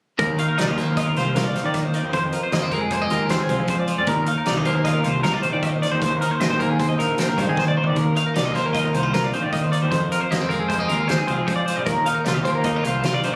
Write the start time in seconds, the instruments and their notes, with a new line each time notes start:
0.19 clean electric guitar D#2 A#4, picked electric bass D#2, kick, closed hi-hat
0.38 clean electric guitar D#3 F5, closed hi-hat
0.48 clean electric guitar A#4
0.58 picked electric bass C2, clean electric guitar D#4 D5, snare, closed hi-hat
0.67 picked electric bass D#2, clean electric guitar F4 D#5
0.78 clean electric guitar A#3 C5, kick, snare, closed hi-hat
0.87 clean electric guitar A#4
0.97 clean electric guitar F4 D#5, kick, closed hi-hat
1.07 clean electric guitar A#4
1.16 picked electric bass C2, clean electric guitar F4 C5, snare, closed hi-hat
1.36 picked electric bass C2, clean electric guitar F4 A#4, snare, closed hi-hat
1.44 clean electric guitar D5
1.54 picked electric bass A#1, clean electric guitar D#3 C5, snare, closed hi-hat
1.64 picked electric bass D#3, clean electric guitar D5
1.74 clean electric guitar D#2 D#5, kick, snare, closed hi-hat
1.85 clean electric guitar C5
1.94 clean electric guitar D#3 D5, closed hi-hat
2.03 picked electric bass D#2, clean electric guitar C5
2.13 clean electric guitar F2 C5, picked electric bass F2, kick, closed hi-hat
2.32 clean electric guitar F3 A#4, closed hi-hat
2.43 clean electric guitar C5
2.52 picked electric bass D#2, clean electric guitar A#3 D#5, snare, closed hi-hat
2.62 picked electric bass F2, clean electric guitar C4 C5
2.71 clean electric guitar G#3 A#4, kick, closed hi-hat
2.82 clean electric guitar G#4
2.90 clean electric guitar A#3 C5, kick, closed hi-hat
3.02 clean electric guitar C4 D#5
3.10 picked electric bass D#2, clean electric guitar F4 A#4, closed hi-hat
3.29 picked electric bass D#2, clean electric guitar C4 C5, snare, closed hi-hat
3.41 clean electric guitar G#4
3.49 picked electric bass C2, clean electric guitar F3 C5, kick, closed hi-hat
3.59 picked electric bass F3, clean electric guitar G#4
3.68 clean electric guitar F2 C5, kick, closed hi-hat
3.80 clean electric guitar D5
3.88 clean electric guitar F3 C5, closed hi-hat
3.98 picked electric bass F2, clean electric guitar D5
4.07 clean electric guitar D#2 A#4, picked electric bass D#2, kick, closed hi-hat
4.26 clean electric guitar D#3 F5, closed hi-hat
4.38 clean electric guitar A#4
4.45 picked electric bass C2, clean electric guitar D#4 D5, snare, closed hi-hat
4.56 picked electric bass D#2, clean electric guitar F4 D#5
4.65 clean electric guitar A#3 C5, kick, closed hi-hat
4.75 clean electric guitar A#4
4.84 clean electric guitar F4 D#5, kick, snare, closed hi-hat
4.94 clean electric guitar A#4
5.04 picked electric bass C2, clean electric guitar F4 C5, closed hi-hat
5.23 picked electric bass C2, clean electric guitar D#4 A#4, snare, closed hi-hat
5.33 clean electric guitar F4 D5
5.42 picked electric bass A#1, clean electric guitar D#3 C5, closed hi-hat
5.53 picked electric bass D#3, clean electric guitar D5
5.63 clean electric guitar D#2 D#5, kick, closed hi-hat
5.73 clean electric guitar C5
5.82 clean electric guitar D#3 D5, snare, closed hi-hat
5.92 picked electric bass D#2, clean electric guitar C5
6.02 clean electric guitar D#2 C5, picked electric bass D#2, kick, closed hi-hat
6.21 clean electric guitar D#3 A#4, closed hi-hat
6.31 clean electric guitar C5
6.40 picked electric bass A#1, clean electric guitar C4 D#5, snare, closed hi-hat
6.50 picked electric bass D#2, clean electric guitar C5
6.59 clean electric guitar A#3 A#4, kick, closed hi-hat
6.70 clean electric guitar G#4
6.79 clean electric guitar C4 C5, kick, closed hi-hat
6.89 clean electric guitar D#5
6.99 picked electric bass A#1, clean electric guitar D#4 A#4, closed hi-hat
7.18 picked electric bass A#1, clean electric guitar C4 C5, snare, closed hi-hat
7.29 clean electric guitar A#4
7.37 picked electric bass G2, clean electric guitar D#3 C5, kick, closed hi-hat
7.48 picked electric bass D#3, clean electric guitar G#4
7.56 clean electric guitar D#2 C5, kick, snare
7.68 clean electric guitar D5, mid tom
7.77 clean electric guitar D#3 C5
7.84 picked electric bass D#2, clean electric guitar D5, floor tom
7.96 clean electric guitar D#2 A#4, picked electric bass D#2, kick, closed hi-hat
8.16 clean electric guitar D#3 F5, closed hi-hat
8.27 clean electric guitar A#4
8.34 picked electric bass C2, clean electric guitar D#4 D5, snare, closed hi-hat
8.44 picked electric bass D#2, clean electric guitar F4 D#5
8.54 clean electric guitar A#3 C5, kick, snare, closed hi-hat
8.66 clean electric guitar A#4
8.73 clean electric guitar F4 D#5, kick, closed hi-hat
8.85 clean electric guitar A#4
8.93 picked electric bass C2, clean electric guitar D#4 C5, closed hi-hat
9.03 clean electric guitar F4
9.14 picked electric bass C2, clean electric guitar F4 A#4, snare, closed hi-hat
9.24 clean electric guitar D5
9.33 picked electric bass A#1, clean electric guitar D#3 C5, closed hi-hat
9.42 picked electric bass D#3, clean electric guitar D5
9.53 clean electric guitar D#2 D#5, kick, closed hi-hat
9.62 clean electric guitar C5
9.72 clean electric guitar D#3 D5, closed hi-hat
9.82 picked electric bass D#2, clean electric guitar C5
9.91 clean electric guitar F2 C5, picked electric bass F2, kick, closed hi-hat
10.12 clean electric guitar F3 A#4, closed hi-hat
10.20 clean electric guitar C5
10.31 picked electric bass D#2, clean electric guitar A#3 D#5, snare, closed hi-hat
10.39 picked electric bass F2, clean electric guitar C4 C5
10.49 clean electric guitar G#3 A#4, kick, closed hi-hat
10.60 clean electric guitar G#4
10.69 clean electric guitar A#3 C5, kick, closed hi-hat
10.79 clean electric guitar C4 D#5
10.88 picked electric bass D#2, clean electric guitar F4 A#4, closed hi-hat
11.08 picked electric bass D#2, clean electric guitar C4 C5, snare, closed hi-hat
11.18 clean electric guitar G#4
11.27 picked electric bass C2, clean electric guitar F3 C5, kick, closed hi-hat
11.37 picked electric bass F3, clean electric guitar G#4
11.47 clean electric guitar F2 C5, kick, closed hi-hat
11.56 clean electric guitar D5
11.66 clean electric guitar F3 C5, closed hi-hat
11.76 picked electric bass A#1, clean electric guitar D5
11.86 picked electric bass D#2, clean electric guitar D#2 A#4, kick, closed hi-hat
12.06 clean electric guitar D#3 F5, closed hi-hat
12.15 clean electric guitar A#4
12.25 picked electric bass C2, clean electric guitar F4 D5, snare, closed hi-hat
12.34 picked electric bass D#2, clean electric guitar D#5
12.45 clean electric guitar A#3 C5, kick, closed hi-hat
12.55 clean electric guitar A#4
12.64 clean electric guitar D#4 D#5, kick, closed hi-hat
12.75 clean electric guitar F4 A#4
12.84 picked electric bass C2, clean electric guitar F4 C5, closed hi-hat
13.03 picked electric bass C2, clean electric guitar F4 A#4, snare, closed hi-hat
13.14 clean electric guitar D5
13.23 picked electric bass A#1, clean electric guitar D#3 C5, closed hi-hat